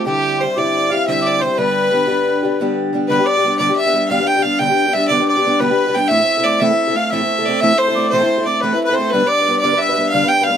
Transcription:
0.05 G2 D3 G3 C4 E4 G4
0.40 G3 C4 E4 G4 C5
0.56 G2 D3 G3 C4 E4 G4 D5
0.91 G3 C4 E4 G4 F5
1.07 G2 D3 G3 C4 E4 G4 E5
1.24 D5
1.41 G3 C4 E4 C5
1.45 G4
1.57 G2 D3 G3 B3 D4 G4 B4
1.91 G3 B3 D4 G4
2.07 G2 D3 G3 B3 D4 G4
2.43 G3 B3 D4 G4
2.60 G2 D3 G3 B3 D4 G4
2.93 G3 B3 D4 G4
3.08 G2 D3 G3 B3 D4 G4 B4
3.19 G3 B3 D4 G4
3.26 D5
3.37 G3 B3 D4 G4
3.44 G3 B3 D4 G4
3.58 G2 D3 G3 B3 D4 G4 D5
3.69 G3 B3 D4 G4
3.76 E5
3.86 G3 B3 D4 G4
3.93 G3 B3 D4 G4
4.08 G2 D3 G3 B3 D4 G4 F5
4.19 G3 B3 D4 G4
4.27 G5
4.36 G3 B3 D4 G4
4.42 G3 B3 D4 F5
4.46 G4
4.59 G2 D3 G3 B3 D4 G4 G5
4.68 G3 B3 D4 G4
4.86 G3 B3 D4 G4
4.93 G3 B3 D4 E5
4.97 G4
5.08 G2 D3 G3 B3 D4 D5
5.12 G4
5.19 G3 B3 D4 G4
5.28 D5
5.36 G3 B3 D4 G4
5.45 G3 B3 D4 G4
5.59 G2 D3 G3 B3 D4 G4 B4
5.69 G3 B3 D4 G4
5.86 G3 B3 D4 G4
5.94 G3 B3 D4 G4 G5
6.08 A2 E3 A3 C4 E4 E5
6.12 A4
6.20 C4 E4 A4
6.37 A3 C4 E4 A4
6.43 A3 C4 E4 D5
6.48 A4
6.59 A2 E3 A3 C4 E4 A4 E5
6.71 A3 C4 E4 A4
6.88 A3 C4 E4 A4
6.94 A3 C4 E4 A4 F5
7.11 A2 E3 A3 C4 E4 A4 E5
7.21 A3 C4 E4 A4
7.39 A3 C4 E4 A4
7.45 A3 C4 D5
7.50 E4 A4
7.60 A2 E3 A3 C4 E4 A4 E5
7.73 A3 C4 E4 A4
7.78 C5
7.88 A3 C4 E4 A4
7.95 A3 C4 E4 A4 D5
8.10 A2 E3 A3 C4 E4 C5
8.14 A4
8.21 A3 C4 E4 A4
8.38 A3 C4 E4 A4
8.45 A3 C4 E4 D5
8.49 A4
8.60 A2 E3 A3 C4 E4 A4 B4
8.72 A3 C4 E4 A4 B4
8.84 B4
8.89 A3 C4 E4 A4
8.94 C5
8.98 A3 C4 E4 A4
9.10 G2 D3 G3 B4
9.15 B3 D4 B4
9.22 G3 B3 B4
9.27 D5
9.40 G3 B3 D4 B4
9.48 G3 B3 D4 B4
9.59 D5
9.63 G2 D3 G3 B3 D4 B4
9.73 G3 B3 D4 B4
9.78 E5
9.89 G3 B3 D4 B4
9.97 G3 B3 D4 B4
10.09 G2 F5
10.14 D3 G3 B3 D4 B4 F5
10.24 G3 B3 D4 B4
10.28 G5
10.41 G3 B3 D4 B4 F5
10.47 G3 B3 D4 F5
10.52 B4

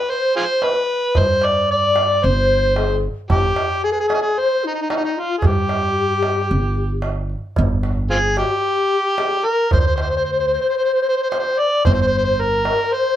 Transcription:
Already playing: B4
0.09 C5, darbuka ka
0.35 F4 G#4 C5
0.62 B4 C5, darbuka tek
0.74 B4
1.15 G2 C5, darbuka dum
1.29 darbuka ka
1.42 D5, darbuka tek
1.69 D5, darbuka ka
1.83 darbuka ka
1.96 darbuka tek
2.23 G1 C5, darbuka ka
2.76 G#4, darbuka tek
3.29 G1 G4, darbuka dum
3.43 darbuka ka
3.56 darbuka tek
3.83 G#4, darbuka ka
3.92 G#4 B4
3.97 G#4, darbuka ka
4.08 G#4, darbuka tek
4.14 G#4
4.22 G#4
4.37 C5, darbuka ka
4.64 D#4
4.74 D#4
4.81 D#4
4.89 D#4, darbuka tek
4.97 D#4
5.04 D#4
5.17 F4
5.38 G#4, darbuka dum
5.44 G2 G4
5.56 darbuka ka
5.69 darbuka tek
5.83 darbuka ka
5.95 darbuka ka
6.09 darbuka ka
6.23 darbuka tek
6.49 G1, darbuka ka
6.75 darbuka ka
7.02 darbuka tek
7.30 darbuka ka
7.56 G1, darbuka dum
7.83 darbuka tek
8.10 C4 F4 G#4
8.37 F#4 G4, darbuka tek
8.53 G4
9.18 G#4, darbuka tek
9.45 A#4
9.71 D2 C5, darbuka dum
9.77 C5 D5
9.85 C5
9.96 C5, darbuka tek
10.01 C5
10.10 C5
10.17 C5
10.24 C5
10.32 C5
10.39 C5, darbuka ka
10.47 C5
10.53 C5
10.61 C5
10.69 C5
10.77 C5
10.84 C5
10.94 C5
11.02 C5
11.09 C5
11.16 C5
11.23 C5
11.30 C5, darbuka tek
11.39 C5
11.59 D5
11.85 G1 C5, darbuka dum
11.93 C5
12.02 C5
12.07 C5
12.14 C5
12.24 C5
12.35 C5
12.40 A#4
12.53 darbuka ka
12.65 darbuka tek
12.93 C5

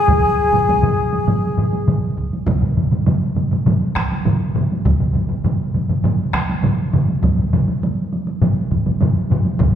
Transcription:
Already playing: G#4
0.08 taiko, taiko low-mid, taiko mid, taiko high
0.53 taiko low-mid, taiko mid, taiko high
0.68 taiko, taiko high
0.82 taiko low-mid, taiko mid
1.13 taiko high
1.27 taiko low-mid, taiko mid, taiko high
1.57 taiko low-mid, taiko mid, taiko high
1.73 taiko high
1.88 taiko low-mid, taiko mid, taiko high
2.17 taiko
2.33 taiko high
2.47 taiko, taiko low-mid, taiko mid, taiko high
2.61 taiko low-mid, taiko mid
2.77 taiko low-mid, taiko mid, taiko high
2.92 taiko low-mid, taiko mid, taiko high
3.06 taiko low-mid, taiko mid, taiko high
3.36 taiko low-mid, taiko mid, taiko high
3.51 taiko low-mid, taiko mid, taiko high
3.66 taiko low-mid, taiko mid, taiko high
3.95 taiko rim, taiko, taiko high
4.12 taiko high
4.26 taiko low-mid, taiko mid, taiko high
4.55 taiko low-mid, taiko mid, taiko high
4.72 taiko high
4.85 taiko, taiko low-mid, taiko mid, taiko high
5.00 taiko low-mid, taiko mid
5.15 taiko low-mid, taiko mid, taiko high
5.29 taiko low-mid, taiko mid
5.44 taiko low-mid, taiko mid, taiko high
5.74 taiko low-mid, taiko mid, taiko high
5.89 taiko low-mid, taiko mid, taiko high
6.04 taiko low-mid, taiko mid, taiko high
6.33 taiko rim, taiko, taiko high
6.49 taiko high
6.63 taiko low-mid, taiko mid, taiko high
6.93 taiko low-mid, taiko mid, taiko high
7.09 taiko high
7.23 taiko, taiko low-mid, taiko mid, taiko high
7.38 taiko low-mid, taiko mid
7.53 taiko low-mid, taiko mid, taiko high
7.68 taiko high
7.83 taiko high
8.13 taiko high
8.27 taiko high
8.41 taiko low-mid, taiko mid, taiko high
8.71 taiko, taiko low-mid, taiko mid, taiko high
8.86 taiko low-mid, taiko mid, taiko high
9.01 taiko low-mid, taiko mid, taiko high
9.30 taiko low-mid, taiko mid, taiko high
9.45 taiko high
9.59 taiko, taiko low-mid, taiko mid, taiko high

